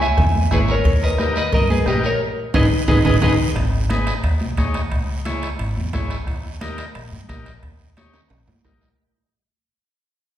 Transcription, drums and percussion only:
0.01 short guiro
0.17 bombo low, bombo rim, cowbell, low conga, long guiro
0.35 high conga
0.51 bombo low, bombo rim, high conga, low conga, short guiro
0.68 short guiro
0.84 bombo low, cowbell, long guiro
1.18 bombo rim, high conga, short guiro
1.36 short guiro
1.52 bombo low, cowbell, low conga, long guiro
1.70 high conga
1.86 bombo rim, high conga, short guiro
2.04 short guiro
2.54 bombo low, low conga, high timbale, long guiro
2.88 bombo low, low conga, high timbale, long guiro
3.05 bombo low, low conga, high timbale, long guiro
3.22 bombo low, low conga, high timbale, long guiro
3.56 bombo low, bombo rim, high timbale, long guiro
3.73 high conga
3.89 bombo rim, high conga, high timbale, short guiro
4.07 bombo rim, high timbale, short guiro
4.23 bombo rim, high conga, high timbale, long guiro
4.41 high conga
4.57 bombo low, bombo rim, high conga, high timbale, short guiro
4.74 bombo rim, high timbale, short guiro
4.92 bombo low, bombo rim, high timbale, long guiro
5.09 high conga
5.25 bombo rim, high conga, high timbale, short guiro
5.42 bombo rim, high timbale, short guiro
5.59 bombo rim, high conga, high timbale, long guiro
5.77 high conga
5.93 bombo low, bombo rim, high conga, high timbale, low timbale, short guiro
6.10 bombo rim, high timbale, short guiro
6.27 bombo low, bombo rim, high timbale, long guiro
6.45 high conga
6.61 bombo rim, high conga, high timbale, short guiro
6.78 bombo rim, high timbale, short guiro
6.95 bombo rim, high conga, high timbale, long guiro
7.13 high conga
7.29 bombo low, bombo rim, high conga, high timbale, short guiro
7.46 bombo rim, high timbale, short guiro
7.63 bombo low, bombo rim, high timbale, long guiro
7.80 high conga
7.97 bombo rim, high conga, high timbale, short guiro
8.13 bombo rim, high timbale, short guiro
8.30 bombo rim, high timbale, long guiro
8.48 high conga, low timbale
8.65 bombo low, bombo rim, high conga, low timbale, short guiro
8.81 bombo rim, low timbale, short guiro

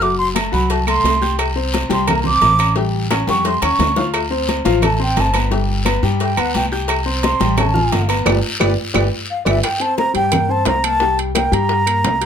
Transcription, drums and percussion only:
0.01 cowbell, high conga, long guiro
0.20 high conga
0.36 cowbell, high conga, low agogo, short guiro, claves
0.53 high conga, short guiro
0.70 cowbell, high conga, low agogo, long guiro
0.87 cowbell, high conga, low agogo, claves
1.04 cowbell, high conga, low timbale, low agogo, short guiro
1.22 high conga, short guiro
1.39 cowbell, high conga, low agogo, long guiro, claves
1.56 high conga
1.73 cowbell, high conga, low agogo, short guiro
1.90 cowbell, high conga, low agogo, short guiro
2.07 cowbell, high conga, low conga, low agogo, long guiro, claves
2.25 high conga, low conga
2.42 cowbell, high conga, low timbale, low agogo, short guiro
2.59 cowbell, low agogo, short guiro, claves
2.76 cowbell, high conga, long guiro
2.95 high conga
3.11 cowbell, high bongo, high conga, low agogo, short guiro, claves
3.28 high bongo, high conga, short guiro
3.45 cowbell, low bongo, high conga, low agogo, long guiro
3.62 cowbell, low bongo, high conga, low agogo, claves
3.79 cowbell, low bongo, high conga, low timbale, low agogo, short guiro
3.96 low bongo, short guiro
4.14 cowbell, high conga, low agogo, long guiro, claves
4.31 high conga
4.48 cowbell, high conga, low agogo, short guiro
4.65 cowbell, high conga, low agogo, short guiro
4.82 cowbell, high conga, low conga, low agogo, long guiro, claves
5.00 high conga
5.16 cowbell, high conga, low timbale, low agogo, short guiro
5.34 cowbell, high conga, low agogo, short guiro, claves
5.52 cowbell, high conga, long guiro
5.69 high conga
5.85 cowbell, high conga, low agogo, short guiro, claves
6.03 high conga, short guiro
6.20 cowbell, high conga, low agogo, long guiro
6.37 cowbell, high conga, low agogo, claves
6.55 cowbell, high conga, low agogo, short guiro
6.72 short guiro
6.88 cowbell, high conga, low agogo, long guiro, claves
7.07 high conga
7.22 cowbell, high conga, low agogo, short guiro
7.40 cowbell, high conga, low agogo, short guiro
7.57 cowbell, high conga, low conga, low agogo, long guiro, claves
7.76 high conga, low conga
7.91 cowbell, high conga, low timbale, low agogo, short guiro
8.09 cowbell, low agogo, short guiro, claves
8.26 cowbell, high conga, high timbale, long guiro, claves
8.61 cowbell, high conga, high timbale, claves
8.94 cowbell, high conga, high timbale, claves
9.46 cowbell, high conga, high timbale, long guiro, claves
9.64 high bongo, high timbale, claves
9.81 high conga, high timbale
9.98 high bongo, high conga, low timbale
10.15 high conga, high timbale
10.32 high bongo, high conga, low conga, high timbale, claves
10.50 high conga
10.65 high bongo, low bongo, high conga, high timbale, low timbale
10.84 high timbale, claves
11.00 high bongo, high conga
11.18 high bongo, high conga, high timbale
11.35 high bongo, high conga, high timbale, low timbale, claves
11.52 high bongo, high conga, high timbale
11.69 high bongo, high conga
11.87 high conga, high timbale, claves
12.04 high bongo, low bongo, high conga, high timbale, low timbale
12.22 high bongo, high timbale

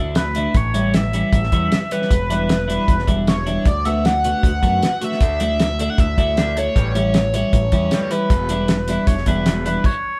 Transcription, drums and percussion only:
0.15 snare, closed hi-hat
0.35 closed hi-hat
0.55 kick, closed hi-hat
0.74 closed hi-hat
0.94 snare, closed hi-hat
1.13 closed hi-hat
1.33 kick, closed hi-hat
1.43 snare
1.52 kick, closed hi-hat
1.72 snare, closed hi-hat
1.91 closed hi-hat
2.02 snare
2.11 kick, closed hi-hat
2.30 closed hi-hat
2.49 snare, closed hi-hat
2.70 closed hi-hat
2.88 kick, closed hi-hat
2.99 snare
3.07 kick, closed hi-hat
3.27 snare, closed hi-hat
3.47 closed hi-hat
3.65 kick, closed hi-hat
3.85 closed hi-hat
4.05 snare, closed hi-hat
4.24 closed hi-hat
4.43 kick, closed hi-hat
4.63 kick, closed hi-hat
4.83 snare, closed hi-hat
5.02 closed hi-hat
5.12 snare
5.21 kick, closed hi-hat
5.40 closed hi-hat
5.60 snare, closed hi-hat
5.79 closed hi-hat
5.98 kick, closed hi-hat
6.18 kick, closed hi-hat
6.37 snare, closed hi-hat
6.57 closed hi-hat
6.76 kick, closed hi-hat
6.95 closed hi-hat
7.14 snare, closed hi-hat
7.34 closed hi-hat
7.53 kick, closed hi-hat
7.72 kick, closed hi-hat
7.91 snare, closed hi-hat
8.11 closed hi-hat
8.30 kick, closed hi-hat
8.49 closed hi-hat
8.68 snare, closed hi-hat
8.88 closed hi-hat
9.07 kick, closed hi-hat
9.18 snare
9.26 kick, closed hi-hat
9.46 snare, closed hi-hat
9.66 closed hi-hat
9.84 kick, crash

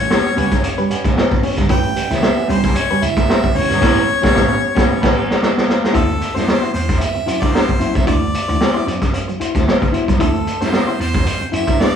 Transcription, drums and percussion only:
0.11 snare
0.26 closed hi-hat
0.38 closed hi-hat
0.51 kick, snare, closed hi-hat
0.64 closed hi-hat
0.78 closed hi-hat
0.90 closed hi-hat
1.05 kick, snare, closed hi-hat
1.18 snare
1.31 kick, snare, closed hi-hat
1.43 open hi-hat
1.58 kick, snare, closed hi-hat
1.69 kick, closed hi-hat
1.83 closed hi-hat
1.96 closed hi-hat
2.10 snare, closed hi-hat
2.23 snare
2.38 closed hi-hat
2.50 closed hi-hat
2.63 kick, snare, closed hi-hat
2.76 closed hi-hat
2.90 closed hi-hat
3.02 closed hi-hat
3.17 kick, snare, closed hi-hat
3.30 snare
3.43 kick, closed hi-hat
3.56 open hi-hat
3.71 snare, closed hi-hat
3.82 kick, snare, crash
4.23 kick, snare
4.35 kick, snare
4.77 kick, snare
5.03 kick, snare, crash
5.31 snare
5.43 snare
5.58 snare
5.69 snare
5.84 snare
5.95 kick, closed hi-hat
6.08 closed hi-hat
6.21 closed hi-hat
6.36 snare, closed hi-hat
6.48 snare
6.64 closed hi-hat
6.76 closed hi-hat
6.89 kick, snare, closed hi-hat
7.01 closed hi-hat
7.15 closed hi-hat
7.28 closed hi-hat
7.42 kick, snare, closed hi-hat
7.55 snare
7.69 kick, closed hi-hat
7.81 closed hi-hat
7.95 kick, snare, closed hi-hat
8.07 kick, closed hi-hat
8.34 closed hi-hat
8.49 closed hi-hat
8.61 snare
8.76 closed hi-hat
8.88 closed hi-hat
9.01 kick, snare, closed hi-hat
9.14 closed hi-hat
9.28 closed hi-hat
9.41 closed hi-hat
9.55 kick, snare, closed hi-hat
9.68 snare
9.82 kick, snare, closed hi-hat
9.94 closed hi-hat
10.08 kick, snare, closed hi-hat
10.20 kick, closed hi-hat
10.34 closed hi-hat
10.47 closed hi-hat
10.61 snare, closed hi-hat
10.73 snare
10.89 closed hi-hat
11.00 closed hi-hat
11.14 kick, snare, closed hi-hat
11.26 closed hi-hat
11.41 closed hi-hat
11.53 closed hi-hat
11.67 kick, snare, closed hi-hat
11.80 snare

